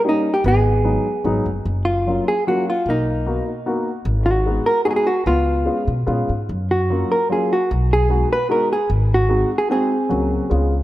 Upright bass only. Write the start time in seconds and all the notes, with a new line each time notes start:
0.44 G#1
1.25 G#1
1.46 F#1
1.65 F#1
2.86 B1
4.05 G#1
5.26 C#2
5.88 B2
6.07 A#2
6.29 G#2
6.49 F#2
7.71 B1
8.90 G#1
10.11 C#2
10.51 C#2